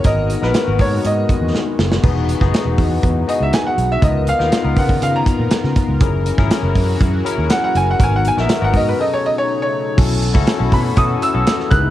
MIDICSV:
0, 0, Header, 1, 7, 480
1, 0, Start_track
1, 0, Tempo, 496278
1, 49, Time_signature, 4, 2, 24, 8
1, 11512, End_track
2, 0, Start_track
2, 0, Title_t, "Grand piano"
2, 0, Program_c, 0, 0
2, 59, Note_on_c, 0, 75, 105
2, 419, Note_on_c, 0, 71, 80
2, 425, Note_off_c, 0, 75, 0
2, 782, Note_on_c, 0, 73, 86
2, 786, Note_off_c, 0, 71, 0
2, 1023, Note_off_c, 0, 73, 0
2, 1028, Note_on_c, 0, 75, 86
2, 1467, Note_off_c, 0, 75, 0
2, 3184, Note_on_c, 0, 75, 72
2, 3301, Note_off_c, 0, 75, 0
2, 3314, Note_on_c, 0, 76, 78
2, 3423, Note_on_c, 0, 80, 83
2, 3426, Note_off_c, 0, 76, 0
2, 3529, Note_off_c, 0, 80, 0
2, 3547, Note_on_c, 0, 78, 83
2, 3786, Note_off_c, 0, 78, 0
2, 3790, Note_on_c, 0, 76, 86
2, 3904, Note_off_c, 0, 76, 0
2, 3904, Note_on_c, 0, 75, 92
2, 4145, Note_off_c, 0, 75, 0
2, 4148, Note_on_c, 0, 77, 116
2, 4631, Note_on_c, 0, 78, 92
2, 4634, Note_off_c, 0, 77, 0
2, 4866, Note_on_c, 0, 77, 104
2, 4869, Note_off_c, 0, 78, 0
2, 4971, Note_off_c, 0, 77, 0
2, 4989, Note_on_c, 0, 82, 99
2, 6142, Note_off_c, 0, 82, 0
2, 7264, Note_on_c, 0, 78, 101
2, 7375, Note_off_c, 0, 78, 0
2, 7390, Note_on_c, 0, 78, 87
2, 7504, Note_off_c, 0, 78, 0
2, 7512, Note_on_c, 0, 80, 111
2, 7625, Note_off_c, 0, 80, 0
2, 7648, Note_on_c, 0, 78, 90
2, 7753, Note_off_c, 0, 78, 0
2, 7772, Note_on_c, 0, 80, 110
2, 7864, Note_off_c, 0, 80, 0
2, 7893, Note_on_c, 0, 78, 96
2, 7985, Note_off_c, 0, 78, 0
2, 8006, Note_on_c, 0, 80, 114
2, 8102, Note_off_c, 0, 80, 0
2, 8123, Note_on_c, 0, 76, 79
2, 8354, Note_off_c, 0, 76, 0
2, 8360, Note_on_c, 0, 78, 96
2, 8469, Note_off_c, 0, 78, 0
2, 8478, Note_on_c, 0, 75, 91
2, 8588, Note_off_c, 0, 75, 0
2, 8594, Note_on_c, 0, 71, 74
2, 8705, Note_off_c, 0, 71, 0
2, 8712, Note_on_c, 0, 75, 92
2, 8825, Note_off_c, 0, 75, 0
2, 8835, Note_on_c, 0, 73, 84
2, 8946, Note_off_c, 0, 73, 0
2, 8955, Note_on_c, 0, 75, 97
2, 9004, Note_off_c, 0, 75, 0
2, 9075, Note_on_c, 0, 73, 93
2, 9292, Note_off_c, 0, 73, 0
2, 9306, Note_on_c, 0, 73, 81
2, 9633, Note_off_c, 0, 73, 0
2, 10384, Note_on_c, 0, 83, 82
2, 10618, Note_on_c, 0, 87, 95
2, 10623, Note_off_c, 0, 83, 0
2, 10860, Note_off_c, 0, 87, 0
2, 10860, Note_on_c, 0, 88, 103
2, 11322, Note_on_c, 0, 90, 107
2, 11347, Note_off_c, 0, 88, 0
2, 11512, Note_off_c, 0, 90, 0
2, 11512, End_track
3, 0, Start_track
3, 0, Title_t, "Tine electric piano"
3, 0, Program_c, 1, 4
3, 0, Control_c, 1, 64, 127
3, 36, Note_on_c, 1, 59, 73
3, 42, Note_on_c, 1, 63, 71
3, 44, Note_on_c, 1, 66, 61
3, 52, Note_on_c, 1, 70, 84
3, 60, Control_c, 1, 64, 0
3, 234, Control_c, 1, 64, 127
3, 372, Note_off_c, 1, 59, 0
3, 375, Note_off_c, 1, 63, 0
3, 376, Note_off_c, 1, 66, 0
3, 380, Note_off_c, 1, 70, 0
3, 399, Note_on_c, 1, 59, 75
3, 401, Note_on_c, 1, 63, 61
3, 409, Note_on_c, 1, 66, 66
3, 414, Note_on_c, 1, 70, 85
3, 624, Note_off_c, 1, 59, 0
3, 625, Note_off_c, 1, 63, 0
3, 629, Note_off_c, 1, 66, 0
3, 632, Note_off_c, 1, 70, 0
3, 640, Note_on_c, 1, 58, 56
3, 646, Note_on_c, 1, 66, 62
3, 648, Note_on_c, 1, 63, 59
3, 652, Note_on_c, 1, 70, 78
3, 700, Note_on_c, 1, 59, 73
3, 703, Note_off_c, 1, 58, 0
3, 1527, Note_off_c, 1, 66, 0
3, 1528, Note_off_c, 1, 63, 0
3, 1530, Note_off_c, 1, 70, 0
3, 1554, Note_off_c, 1, 59, 0
3, 1970, Note_on_c, 1, 59, 97
3, 1971, Note_on_c, 1, 63, 83
3, 1976, Note_on_c, 1, 66, 80
3, 1978, Note_on_c, 1, 68, 100
3, 1983, Control_c, 1, 64, 0
3, 2136, Control_c, 1, 64, 127
3, 2300, Note_off_c, 1, 59, 0
3, 2300, Note_off_c, 1, 63, 0
3, 2303, Note_off_c, 1, 66, 0
3, 2304, Note_off_c, 1, 68, 0
3, 2331, Note_on_c, 1, 59, 86
3, 2331, Note_on_c, 1, 63, 85
3, 2336, Note_on_c, 1, 66, 83
3, 2339, Note_on_c, 1, 68, 93
3, 3099, Note_off_c, 1, 59, 0
3, 3100, Note_off_c, 1, 63, 0
3, 3102, Note_off_c, 1, 66, 0
3, 3104, Note_off_c, 1, 68, 0
3, 3169, Note_on_c, 1, 59, 76
3, 3169, Note_on_c, 1, 63, 68
3, 3175, Note_on_c, 1, 66, 75
3, 3179, Note_on_c, 1, 68, 78
3, 3829, Note_off_c, 1, 59, 0
3, 3829, Note_off_c, 1, 63, 0
3, 3832, Note_off_c, 1, 66, 0
3, 3834, Note_off_c, 1, 68, 0
3, 3883, Note_on_c, 1, 59, 79
3, 3889, Note_on_c, 1, 63, 74
3, 3890, Note_on_c, 1, 65, 72
3, 3893, Note_on_c, 1, 70, 87
3, 3903, Control_c, 1, 64, 0
3, 4102, Control_c, 1, 64, 127
3, 4217, Note_off_c, 1, 59, 0
3, 4220, Note_off_c, 1, 63, 0
3, 4220, Note_off_c, 1, 65, 0
3, 4222, Note_off_c, 1, 70, 0
3, 4245, Note_on_c, 1, 59, 77
3, 4246, Note_on_c, 1, 63, 76
3, 4252, Note_on_c, 1, 70, 74
3, 4253, Note_on_c, 1, 65, 62
3, 4468, Note_off_c, 1, 59, 0
3, 4469, Note_off_c, 1, 63, 0
3, 4472, Note_off_c, 1, 65, 0
3, 4472, Note_off_c, 1, 70, 0
3, 4486, Note_on_c, 1, 63, 67
3, 4488, Note_on_c, 1, 59, 70
3, 4493, Note_on_c, 1, 65, 61
3, 4495, Note_on_c, 1, 70, 78
3, 5367, Note_off_c, 1, 63, 0
3, 5368, Note_off_c, 1, 59, 0
3, 5370, Note_off_c, 1, 65, 0
3, 5371, Note_off_c, 1, 70, 0
3, 5811, Note_on_c, 1, 61, 82
3, 5813, Note_on_c, 1, 64, 89
3, 5817, Note_on_c, 1, 68, 81
3, 5820, Note_on_c, 1, 70, 105
3, 5823, Control_c, 1, 64, 0
3, 5972, Control_c, 1, 64, 127
3, 6141, Note_off_c, 1, 61, 0
3, 6142, Note_off_c, 1, 64, 0
3, 6144, Note_off_c, 1, 68, 0
3, 6145, Note_off_c, 1, 70, 0
3, 6171, Note_on_c, 1, 64, 83
3, 6173, Note_on_c, 1, 61, 95
3, 6179, Note_on_c, 1, 68, 82
3, 6185, Note_on_c, 1, 70, 101
3, 6939, Note_off_c, 1, 64, 0
3, 6940, Note_off_c, 1, 61, 0
3, 6943, Note_off_c, 1, 68, 0
3, 6946, Note_off_c, 1, 70, 0
3, 7009, Note_on_c, 1, 61, 96
3, 7010, Note_on_c, 1, 64, 86
3, 7020, Note_on_c, 1, 68, 81
3, 7021, Note_on_c, 1, 70, 104
3, 7669, Note_off_c, 1, 61, 0
3, 7669, Note_off_c, 1, 64, 0
3, 7674, Note_off_c, 1, 68, 0
3, 7674, Note_off_c, 1, 70, 0
3, 7724, Note_on_c, 1, 59, 81
3, 7729, Note_on_c, 1, 63, 72
3, 7733, Note_on_c, 1, 66, 75
3, 7737, Note_on_c, 1, 70, 86
3, 7744, Control_c, 1, 64, 0
3, 7930, Control_c, 1, 64, 127
3, 8057, Note_off_c, 1, 59, 0
3, 8059, Note_off_c, 1, 63, 0
3, 8061, Note_off_c, 1, 66, 0
3, 8063, Note_off_c, 1, 70, 0
3, 8092, Note_on_c, 1, 59, 72
3, 8096, Note_on_c, 1, 63, 74
3, 8100, Note_on_c, 1, 66, 68
3, 8106, Note_on_c, 1, 70, 83
3, 8309, Note_off_c, 1, 59, 0
3, 8313, Note_off_c, 1, 63, 0
3, 8315, Note_off_c, 1, 66, 0
3, 8318, Note_off_c, 1, 70, 0
3, 8321, Note_on_c, 1, 59, 79
3, 8325, Note_on_c, 1, 63, 68
3, 8330, Note_on_c, 1, 66, 70
3, 8335, Note_on_c, 1, 70, 87
3, 8681, Note_off_c, 1, 63, 0
3, 8685, Note_off_c, 1, 59, 0
3, 8688, Note_on_c, 1, 47, 75
3, 8690, Note_off_c, 1, 66, 0
3, 8690, Note_on_c, 1, 61, 72
3, 8692, Note_on_c, 1, 63, 72
3, 8693, Note_off_c, 1, 70, 0
3, 8694, Note_on_c, 1, 68, 74
3, 8700, Note_on_c, 1, 69, 86
3, 8701, Control_c, 1, 64, 0
3, 8851, Control_c, 1, 64, 127
3, 9566, Note_off_c, 1, 47, 0
3, 9567, Note_off_c, 1, 61, 0
3, 9568, Note_off_c, 1, 63, 0
3, 9569, Note_off_c, 1, 68, 0
3, 9572, Note_off_c, 1, 69, 0
3, 9646, Note_on_c, 1, 61, 81
3, 9647, Note_on_c, 1, 64, 76
3, 9649, Note_on_c, 1, 66, 70
3, 9655, Note_on_c, 1, 69, 87
3, 9662, Control_c, 1, 64, 0
3, 9809, Control_c, 1, 64, 127
3, 9976, Note_off_c, 1, 61, 0
3, 9977, Note_off_c, 1, 64, 0
3, 9978, Note_off_c, 1, 66, 0
3, 9981, Note_off_c, 1, 69, 0
3, 10000, Note_on_c, 1, 61, 83
3, 10000, Note_on_c, 1, 64, 90
3, 10006, Note_on_c, 1, 66, 88
3, 10011, Note_on_c, 1, 69, 103
3, 10222, Note_off_c, 1, 61, 0
3, 10224, Note_off_c, 1, 64, 0
3, 10227, Note_off_c, 1, 66, 0
3, 10229, Note_off_c, 1, 69, 0
3, 10233, Note_on_c, 1, 61, 77
3, 10239, Note_on_c, 1, 64, 64
3, 10245, Note_on_c, 1, 69, 83
3, 10246, Note_on_c, 1, 66, 75
3, 10570, Note_off_c, 1, 61, 0
3, 10573, Note_off_c, 1, 64, 0
3, 10576, Note_off_c, 1, 66, 0
3, 10576, Note_off_c, 1, 69, 0
3, 10596, Note_on_c, 1, 61, 72
3, 10602, Note_on_c, 1, 64, 75
3, 10604, Note_on_c, 1, 66, 76
3, 10608, Note_on_c, 1, 69, 86
3, 10931, Note_off_c, 1, 61, 0
3, 10934, Note_off_c, 1, 64, 0
3, 10935, Note_off_c, 1, 66, 0
3, 10937, Note_off_c, 1, 69, 0
3, 10960, Note_on_c, 1, 61, 85
3, 10967, Note_on_c, 1, 64, 68
3, 10970, Note_on_c, 1, 66, 79
3, 10971, Note_on_c, 1, 69, 87
3, 11293, Note_off_c, 1, 61, 0
3, 11296, Note_off_c, 1, 64, 0
3, 11297, Note_off_c, 1, 66, 0
3, 11298, Note_off_c, 1, 69, 0
3, 11320, Note_on_c, 1, 63, 84
3, 11323, Note_on_c, 1, 64, 70
3, 11326, Note_on_c, 1, 68, 69
3, 11329, Note_on_c, 1, 70, 68
3, 11337, Control_c, 1, 64, 0
3, 11386, Note_off_c, 1, 70, 0
3, 11387, Note_on_c, 1, 71, 80
3, 11485, Control_c, 1, 64, 127
3, 11512, Note_off_c, 1, 63, 0
3, 11512, Note_off_c, 1, 64, 0
3, 11512, Note_off_c, 1, 68, 0
3, 11512, Note_off_c, 1, 71, 0
3, 11512, End_track
4, 0, Start_track
4, 0, Title_t, "Analog synth pad"
4, 0, Program_c, 2, 89
4, 0, Note_on_c, 2, 56, 85
4, 0, Note_on_c, 2, 66, 94
4, 51, Note_on_c, 2, 59, 77
4, 54, Note_on_c, 2, 51, 87
4, 1953, Note_off_c, 2, 59, 0
4, 1954, Note_off_c, 2, 51, 0
4, 1965, Note_on_c, 2, 63, 79
4, 1966, Note_on_c, 2, 52, 90
4, 3852, Note_off_c, 2, 56, 0
4, 3853, Note_off_c, 2, 66, 0
4, 3870, Note_off_c, 2, 52, 0
4, 3870, Note_off_c, 2, 63, 0
4, 3890, Note_on_c, 2, 51, 94
4, 3890, Note_on_c, 2, 65, 101
4, 3891, Note_on_c, 2, 59, 79
4, 3895, Note_on_c, 2, 70, 79
4, 5792, Note_off_c, 2, 51, 0
4, 5792, Note_off_c, 2, 65, 0
4, 5793, Note_off_c, 2, 59, 0
4, 5802, Note_on_c, 2, 66, 106
4, 5803, Note_on_c, 2, 52, 93
4, 5806, Note_on_c, 2, 54, 83
4, 7694, Note_off_c, 2, 70, 0
4, 7708, Note_off_c, 2, 52, 0
4, 7737, Note_on_c, 2, 59, 83
4, 7739, Note_on_c, 2, 51, 86
4, 8657, Note_off_c, 2, 66, 0
4, 8684, Note_off_c, 2, 59, 0
4, 8685, Note_off_c, 2, 51, 0
4, 8690, Note_on_c, 2, 49, 83
4, 8693, Note_on_c, 2, 63, 87
4, 8695, Note_on_c, 2, 57, 70
4, 9609, Note_off_c, 2, 54, 0
4, 9638, Note_off_c, 2, 57, 0
4, 9640, Note_off_c, 2, 49, 0
4, 9641, Note_off_c, 2, 63, 0
4, 9648, Note_on_c, 2, 52, 91
4, 9650, Note_on_c, 2, 57, 87
4, 9652, Note_on_c, 2, 59, 86
4, 9653, Note_on_c, 2, 66, 100
4, 11309, Note_off_c, 2, 52, 0
4, 11311, Note_off_c, 2, 57, 0
4, 11312, Note_off_c, 2, 66, 0
4, 11319, Note_on_c, 2, 56, 78
4, 11324, Note_on_c, 2, 49, 73
4, 11324, Note_on_c, 2, 52, 80
4, 11512, Note_off_c, 2, 49, 0
4, 11512, Note_off_c, 2, 52, 0
4, 11512, Note_off_c, 2, 56, 0
4, 11512, Note_off_c, 2, 59, 0
4, 11512, End_track
5, 0, Start_track
5, 0, Title_t, "Fretless electric bass"
5, 0, Program_c, 3, 35
5, 47, Note_on_c, 3, 32, 94
5, 330, Note_off_c, 3, 32, 0
5, 410, Note_on_c, 3, 34, 77
5, 504, Note_off_c, 3, 34, 0
5, 655, Note_on_c, 3, 32, 90
5, 747, Note_off_c, 3, 32, 0
5, 768, Note_on_c, 3, 44, 100
5, 956, Note_off_c, 3, 44, 0
5, 1013, Note_on_c, 3, 44, 105
5, 1200, Note_off_c, 3, 44, 0
5, 1367, Note_on_c, 3, 40, 78
5, 1462, Note_off_c, 3, 40, 0
5, 1728, Note_on_c, 3, 30, 82
5, 1917, Note_off_c, 3, 30, 0
5, 1970, Note_on_c, 3, 28, 99
5, 2252, Note_off_c, 3, 28, 0
5, 2332, Note_on_c, 3, 30, 80
5, 2426, Note_off_c, 3, 30, 0
5, 2563, Note_on_c, 3, 28, 96
5, 2660, Note_off_c, 3, 28, 0
5, 2692, Note_on_c, 3, 40, 101
5, 2880, Note_off_c, 3, 40, 0
5, 2932, Note_on_c, 3, 40, 114
5, 3119, Note_off_c, 3, 40, 0
5, 3292, Note_on_c, 3, 37, 76
5, 3386, Note_off_c, 3, 37, 0
5, 3653, Note_on_c, 3, 35, 89
5, 3840, Note_off_c, 3, 35, 0
5, 3891, Note_on_c, 3, 37, 108
5, 4173, Note_off_c, 3, 37, 0
5, 4255, Note_on_c, 3, 39, 84
5, 4348, Note_off_c, 3, 39, 0
5, 4493, Note_on_c, 3, 37, 98
5, 4586, Note_off_c, 3, 37, 0
5, 4611, Note_on_c, 3, 49, 96
5, 4799, Note_off_c, 3, 49, 0
5, 4856, Note_on_c, 3, 49, 107
5, 5042, Note_off_c, 3, 49, 0
5, 5214, Note_on_c, 3, 46, 83
5, 5307, Note_off_c, 3, 46, 0
5, 5455, Note_on_c, 3, 49, 102
5, 5547, Note_off_c, 3, 49, 0
5, 5691, Note_on_c, 3, 37, 88
5, 5785, Note_off_c, 3, 37, 0
5, 5812, Note_on_c, 3, 30, 89
5, 6093, Note_off_c, 3, 30, 0
5, 6174, Note_on_c, 3, 32, 77
5, 6267, Note_off_c, 3, 32, 0
5, 6410, Note_on_c, 3, 30, 100
5, 6505, Note_off_c, 3, 30, 0
5, 6533, Note_on_c, 3, 42, 92
5, 6720, Note_off_c, 3, 42, 0
5, 6778, Note_on_c, 3, 42, 107
5, 6963, Note_off_c, 3, 42, 0
5, 7136, Note_on_c, 3, 39, 83
5, 7228, Note_off_c, 3, 39, 0
5, 7496, Note_on_c, 3, 30, 89
5, 7682, Note_off_c, 3, 30, 0
5, 7736, Note_on_c, 3, 32, 107
5, 8015, Note_off_c, 3, 32, 0
5, 8098, Note_on_c, 3, 34, 78
5, 8189, Note_off_c, 3, 34, 0
5, 8336, Note_on_c, 3, 32, 106
5, 8428, Note_off_c, 3, 32, 0
5, 8451, Note_on_c, 3, 44, 95
5, 8639, Note_off_c, 3, 44, 0
5, 9652, Note_on_c, 3, 35, 102
5, 10008, Note_off_c, 3, 35, 0
5, 10008, Note_on_c, 3, 37, 85
5, 10102, Note_off_c, 3, 37, 0
5, 10253, Note_on_c, 3, 35, 97
5, 10345, Note_off_c, 3, 35, 0
5, 10372, Note_on_c, 3, 47, 104
5, 10558, Note_off_c, 3, 47, 0
5, 10612, Note_on_c, 3, 47, 120
5, 10798, Note_off_c, 3, 47, 0
5, 10973, Note_on_c, 3, 35, 77
5, 11065, Note_off_c, 3, 35, 0
5, 11331, Note_on_c, 3, 37, 99
5, 11512, Note_off_c, 3, 37, 0
5, 11512, End_track
6, 0, Start_track
6, 0, Title_t, "Muted fretless electric bass strokes"
6, 5336, Note_on_c, 9, 29, 47
6, 5433, Note_off_c, 9, 29, 0
6, 11512, End_track
7, 0, Start_track
7, 0, Title_t, "Drums"
7, 42, Note_on_c, 9, 42, 97
7, 47, Note_on_c, 9, 36, 110
7, 139, Note_off_c, 9, 42, 0
7, 143, Note_off_c, 9, 36, 0
7, 290, Note_on_c, 9, 42, 65
7, 387, Note_off_c, 9, 42, 0
7, 413, Note_on_c, 9, 38, 36
7, 509, Note_off_c, 9, 38, 0
7, 526, Note_on_c, 9, 42, 83
7, 531, Note_on_c, 9, 38, 126
7, 623, Note_off_c, 9, 42, 0
7, 628, Note_off_c, 9, 38, 0
7, 764, Note_on_c, 9, 46, 73
7, 768, Note_on_c, 9, 36, 89
7, 860, Note_off_c, 9, 46, 0
7, 865, Note_off_c, 9, 36, 0
7, 1012, Note_on_c, 9, 42, 84
7, 1109, Note_off_c, 9, 42, 0
7, 1250, Note_on_c, 9, 36, 94
7, 1255, Note_on_c, 9, 42, 64
7, 1347, Note_off_c, 9, 36, 0
7, 1351, Note_off_c, 9, 42, 0
7, 1496, Note_on_c, 9, 38, 69
7, 1593, Note_off_c, 9, 38, 0
7, 1731, Note_on_c, 9, 38, 90
7, 1828, Note_off_c, 9, 38, 0
7, 1854, Note_on_c, 9, 38, 94
7, 1950, Note_off_c, 9, 38, 0
7, 1967, Note_on_c, 9, 49, 75
7, 1970, Note_on_c, 9, 36, 125
7, 2064, Note_off_c, 9, 49, 0
7, 2066, Note_off_c, 9, 36, 0
7, 2214, Note_on_c, 9, 42, 70
7, 2311, Note_off_c, 9, 42, 0
7, 2331, Note_on_c, 9, 36, 95
7, 2333, Note_on_c, 9, 38, 31
7, 2428, Note_off_c, 9, 36, 0
7, 2430, Note_off_c, 9, 38, 0
7, 2457, Note_on_c, 9, 42, 79
7, 2462, Note_on_c, 9, 38, 117
7, 2554, Note_off_c, 9, 42, 0
7, 2559, Note_off_c, 9, 38, 0
7, 2688, Note_on_c, 9, 46, 74
7, 2690, Note_on_c, 9, 36, 88
7, 2785, Note_off_c, 9, 46, 0
7, 2786, Note_off_c, 9, 36, 0
7, 2932, Note_on_c, 9, 36, 95
7, 2933, Note_on_c, 9, 42, 78
7, 3028, Note_off_c, 9, 36, 0
7, 3029, Note_off_c, 9, 42, 0
7, 3179, Note_on_c, 9, 42, 75
7, 3275, Note_off_c, 9, 42, 0
7, 3414, Note_on_c, 9, 42, 98
7, 3419, Note_on_c, 9, 38, 126
7, 3510, Note_off_c, 9, 42, 0
7, 3516, Note_off_c, 9, 38, 0
7, 3656, Note_on_c, 9, 42, 69
7, 3753, Note_off_c, 9, 42, 0
7, 3890, Note_on_c, 9, 36, 116
7, 3891, Note_on_c, 9, 42, 88
7, 3987, Note_off_c, 9, 36, 0
7, 3988, Note_off_c, 9, 42, 0
7, 4130, Note_on_c, 9, 42, 68
7, 4227, Note_off_c, 9, 42, 0
7, 4255, Note_on_c, 9, 38, 34
7, 4351, Note_off_c, 9, 38, 0
7, 4372, Note_on_c, 9, 42, 86
7, 4377, Note_on_c, 9, 38, 120
7, 4469, Note_off_c, 9, 42, 0
7, 4474, Note_off_c, 9, 38, 0
7, 4607, Note_on_c, 9, 46, 66
7, 4610, Note_on_c, 9, 36, 93
7, 4704, Note_off_c, 9, 46, 0
7, 4706, Note_off_c, 9, 36, 0
7, 4731, Note_on_c, 9, 36, 92
7, 4828, Note_off_c, 9, 36, 0
7, 4856, Note_on_c, 9, 42, 82
7, 4952, Note_off_c, 9, 42, 0
7, 5090, Note_on_c, 9, 36, 95
7, 5100, Note_on_c, 9, 42, 77
7, 5187, Note_off_c, 9, 36, 0
7, 5196, Note_off_c, 9, 42, 0
7, 5327, Note_on_c, 9, 42, 97
7, 5333, Note_on_c, 9, 38, 127
7, 5424, Note_off_c, 9, 42, 0
7, 5429, Note_off_c, 9, 38, 0
7, 5456, Note_on_c, 9, 38, 39
7, 5553, Note_off_c, 9, 38, 0
7, 5571, Note_on_c, 9, 42, 75
7, 5573, Note_on_c, 9, 36, 93
7, 5668, Note_off_c, 9, 42, 0
7, 5670, Note_off_c, 9, 36, 0
7, 5810, Note_on_c, 9, 42, 86
7, 5811, Note_on_c, 9, 36, 125
7, 5906, Note_off_c, 9, 42, 0
7, 5908, Note_off_c, 9, 36, 0
7, 6055, Note_on_c, 9, 42, 76
7, 6152, Note_off_c, 9, 42, 0
7, 6173, Note_on_c, 9, 36, 100
7, 6176, Note_on_c, 9, 38, 33
7, 6270, Note_off_c, 9, 36, 0
7, 6273, Note_off_c, 9, 38, 0
7, 6294, Note_on_c, 9, 42, 93
7, 6299, Note_on_c, 9, 38, 118
7, 6391, Note_off_c, 9, 42, 0
7, 6396, Note_off_c, 9, 38, 0
7, 6533, Note_on_c, 9, 36, 78
7, 6534, Note_on_c, 9, 46, 74
7, 6630, Note_off_c, 9, 36, 0
7, 6630, Note_off_c, 9, 46, 0
7, 6777, Note_on_c, 9, 36, 105
7, 6779, Note_on_c, 9, 42, 75
7, 6874, Note_off_c, 9, 36, 0
7, 6876, Note_off_c, 9, 42, 0
7, 7024, Note_on_c, 9, 42, 80
7, 7120, Note_off_c, 9, 42, 0
7, 7253, Note_on_c, 9, 42, 104
7, 7258, Note_on_c, 9, 38, 124
7, 7350, Note_off_c, 9, 42, 0
7, 7355, Note_off_c, 9, 38, 0
7, 7501, Note_on_c, 9, 42, 71
7, 7598, Note_off_c, 9, 42, 0
7, 7736, Note_on_c, 9, 36, 112
7, 7737, Note_on_c, 9, 42, 95
7, 7832, Note_off_c, 9, 36, 0
7, 7833, Note_off_c, 9, 42, 0
7, 7978, Note_on_c, 9, 42, 67
7, 8074, Note_off_c, 9, 42, 0
7, 8099, Note_on_c, 9, 38, 33
7, 8196, Note_off_c, 9, 38, 0
7, 8214, Note_on_c, 9, 42, 88
7, 8219, Note_on_c, 9, 38, 117
7, 8310, Note_off_c, 9, 42, 0
7, 8315, Note_off_c, 9, 38, 0
7, 8449, Note_on_c, 9, 46, 68
7, 8451, Note_on_c, 9, 36, 80
7, 8545, Note_off_c, 9, 46, 0
7, 8547, Note_off_c, 9, 36, 0
7, 9652, Note_on_c, 9, 36, 120
7, 9653, Note_on_c, 9, 57, 112
7, 9749, Note_off_c, 9, 36, 0
7, 9750, Note_off_c, 9, 57, 0
7, 9890, Note_on_c, 9, 42, 73
7, 9986, Note_off_c, 9, 42, 0
7, 10007, Note_on_c, 9, 38, 37
7, 10009, Note_on_c, 9, 36, 108
7, 10104, Note_off_c, 9, 38, 0
7, 10106, Note_off_c, 9, 36, 0
7, 10127, Note_on_c, 9, 42, 90
7, 10132, Note_on_c, 9, 38, 118
7, 10224, Note_off_c, 9, 42, 0
7, 10229, Note_off_c, 9, 38, 0
7, 10366, Note_on_c, 9, 46, 74
7, 10368, Note_on_c, 9, 36, 90
7, 10463, Note_off_c, 9, 46, 0
7, 10465, Note_off_c, 9, 36, 0
7, 10607, Note_on_c, 9, 42, 87
7, 10610, Note_on_c, 9, 36, 99
7, 10704, Note_off_c, 9, 42, 0
7, 10707, Note_off_c, 9, 36, 0
7, 10853, Note_on_c, 9, 42, 82
7, 10950, Note_off_c, 9, 42, 0
7, 11091, Note_on_c, 9, 42, 99
7, 11096, Note_on_c, 9, 38, 127
7, 11188, Note_off_c, 9, 42, 0
7, 11193, Note_off_c, 9, 38, 0
7, 11217, Note_on_c, 9, 38, 39
7, 11314, Note_off_c, 9, 38, 0
7, 11329, Note_on_c, 9, 36, 117
7, 11330, Note_on_c, 9, 42, 73
7, 11426, Note_off_c, 9, 36, 0
7, 11427, Note_off_c, 9, 42, 0
7, 11512, End_track
0, 0, End_of_file